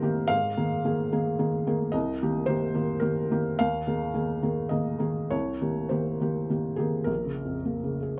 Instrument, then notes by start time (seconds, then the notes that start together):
felt piano
Already playing: C2 D#3 A#3 G4 A#4 C5 D#5
0.02 D#3 A#3 G4
0.28 G#2 F5
0.57 D#3 A#3 G#4
0.85 D#3 A#3 G#4
1.12 D#3 A#3 G#4
1.39 D#3 A#3 G#4
1.67 D#3 A#3 G#4
1.92 C2 D#5
2.22 D#3 A#3 G4
2.46 D#3 A#3 G4 C5
2.75 D#3 A#3 G4
3.00 D#3 A#3 G4 A#4
3.31 D#3 A#3 G4
3.59 D#2 F5
3.87 D#3 A#3 G#4
4.14 D#3 A#3 G#4
4.42 D#3 A#3 G#4
4.69 D#3 A#3 G#4 D#5
4.99 D#3 A#3 G#4
5.30 C2 C#5
5.61 D#3 A#3 G4
5.89 D#3 A#3 G4 C5
6.20 D#3 A#3 G4
6.49 D#3 A#3 G4
6.76 D#3 A#3 G4 G#4
7.04 A#1 A#4
7.25 C#3
7.45 F2
7.65 A#3
7.84 C#3
8.03 G#4